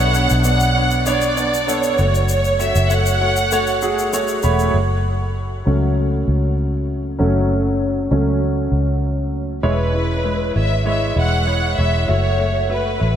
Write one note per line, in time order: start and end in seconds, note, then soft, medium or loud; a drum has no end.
0.00 0.27 B1 loud
0.00 0.72 B2 medium
0.00 0.11 B3 medium
0.00 0.11 D4 medium
0.00 0.11 C#5 medium
0.00 0.42 F#5 loud
0.14 0.42 B3 medium
0.14 0.42 D4 medium
0.14 0.42 C#5 medium
0.14 shaker soft
0.29 1.95 B1 medium
0.29 shaker medium
0.44 0.72 B3 medium
0.44 0.72 D4 medium
0.44 0.72 D5 medium
0.44 1.03 F#5 medium
0.44 shaker medium
0.60 shaker soft
0.75 1.03 B3 medium
0.75 1.03 D4 medium
0.75 1.03 C#5 medium
0.91 shaker soft
1.06 1.33 B3 medium
1.06 1.34 D4 medium
1.06 1.34 C#5 loud
1.06 1.69 D5 medium
1.06 shaker medium
1.21 shaker soft
1.37 1.64 B3 medium
1.37 1.64 D4 medium
1.37 1.64 D5 medium
1.37 shaker soft
1.54 shaker soft
1.68 1.95 B3 medium
1.68 1.95 D4 medium
1.68 1.95 A4 medium
1.68 2.29 C#5 medium
1.68 shaker medium
1.83 shaker soft
1.98 2.71 F#1 medium
1.98 2.52 A3 medium
1.98 2.52 F#4 medium
1.98 2.52 C#5 medium
1.98 shaker soft
2.15 shaker soft
2.29 2.58 C#5 medium
2.29 shaker medium
2.45 shaker soft
2.59 2.86 A3 medium
2.59 2.87 F#4 medium
2.59 2.87 C#5 medium
2.59 2.91 E5 medium
2.59 shaker medium
2.75 4.40 F#1 medium
2.75 shaker soft
2.90 3.17 A3 medium
2.90 3.17 F#4 medium
2.90 3.18 C#5 medium
2.90 4.13 F#5 medium
2.90 shaker medium
3.06 shaker medium
3.21 3.48 A3 medium
3.21 3.48 F#4 medium
3.21 3.48 C#5 medium
3.36 shaker soft
3.51 3.79 A3 medium
3.51 3.79 F#4 medium
3.51 3.79 C#5 loud
3.51 shaker medium
3.67 shaker soft
3.82 4.09 A3 medium
3.82 4.09 F#4 medium
3.82 4.09 G#4 medium
3.82 shaker soft
3.99 shaker soft
4.13 4.40 A3 medium
4.13 4.40 F#4 medium
4.13 4.40 C#5 medium
4.13 4.41 F#5 medium
4.13 shaker medium
4.28 shaker soft
4.43 4.72 E1 medium
4.43 4.70 A3 medium
4.43 4.70 F#4 medium
4.43 4.71 C#5 medium
4.43 4.72 B5 medium
4.43 shaker soft
4.59 shaker soft
4.74 5.62 F#1 medium
5.65 6.24 C#2 medium
5.65 6.54 F#3 soft
5.65 6.54 A3 soft
5.65 6.54 C#4 soft
6.28 7.22 C#2 medium
7.19 8.07 F#1 medium
7.19 8.07 F#3 soft
7.19 8.07 A3 soft
7.19 8.07 C#4 soft
8.11 8.68 C#2 medium
8.11 8.38 F#3 soft
8.11 8.39 A3 soft
8.11 8.39 C#4 soft
8.72 9.60 C#2 medium
9.63 10.52 E1 medium
9.63 10.51 E3 soft
9.63 9.90 G#3 medium
9.63 9.91 E4 medium
9.63 10.52 B4 medium
9.63 9.90 C#5 medium
9.94 10.21 G#3 medium
9.94 10.21 E4 medium
9.94 10.21 C#5 medium
10.24 10.52 G#3 medium
10.24 10.52 E4 medium
10.24 10.52 B4 medium
10.55 11.13 G#1 medium
10.55 10.82 G#3 soft
10.55 10.82 E4 soft
10.55 10.83 C#5 medium
10.55 10.87 E5 medium
10.85 11.13 G#3 medium
10.85 11.13 E4 medium
10.85 11.13 C#5 medium
10.85 11.16 E5 medium
11.16 11.74 E1 medium
11.16 11.43 G#3 medium
11.16 11.43 E4 medium
11.16 11.43 E5 medium
11.16 11.75 F#5 medium
11.47 11.74 G#3 medium
11.47 11.74 E4 medium
11.47 11.74 C#5 medium
11.78 12.07 E1 medium
11.78 12.05 G#3 medium
11.78 12.05 E4 medium
11.78 12.05 C#5 medium
11.78 12.10 E5 medium
12.08 12.97 F#1 medium
12.08 12.35 A3 medium
12.08 12.35 F#4 medium
12.08 12.67 C#5 medium
12.08 12.35 E5 medium
12.39 12.66 A3 medium
12.39 12.66 F#4 medium
12.39 12.66 E5 medium
12.70 12.97 A3 medium
12.70 12.97 F#4 medium
12.70 13.16 B4 medium
12.70 12.97 E5 medium
12.99 13.16 A1 medium
12.99 13.16 A3 soft
12.99 13.16 F#4 soft
12.99 13.16 E5 medium